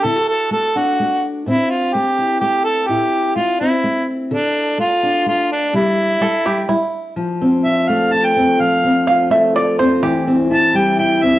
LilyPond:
<<
  \new Staff \with { instrumentName = "Five-string banjo" } { \time 3/4 \key f \lydian \tempo 4 = 126 r2. | r2. | r2. | r2. |
r4 a'8 g'8 e'4 | r2. | r4 f''8 e''8 d''8 c''8 | g'8. r2 r16 | }
  \new Staff \with { instrumentName = "Harmonica" } { \time 3/4 \key f \lydian a'8 a'8 a'8 fis'4 r8 | e'8 f'8 g'4 g'8 a'8 | g'4 f'8 e'4 r8 | d'4 f'4 f'8 d'8 |
e'2 r4 | r4 e''8 f''8 a''16 g''8. | f''4 r2 | r4 a''8 g''8 g''8 e''8 | }
  \new Staff \with { instrumentName = "Steel-string acoustic guitar" } { \time 3/4 \key f \lydian << { <e' a'>16 fis'4~ fis'16 d'4. | c'4. e'4. | e'4. c'4. | a'4. d'4. |
g4 r8 g8 r4 | r8 c'8 f'4 f'8 c'8~ | c'8 c'8 f'4 f'8 c'8~ | c'8 c'8 e'4 e'8 c'8 | } \\ { d4 a4 a4 | a,4 a4 a4 | a,4 a4 a4 | d4 a4 a4 |
c4 g8 r8 g4 | f4. a4. | f4. a4. | e4. g4. | } >> }
>>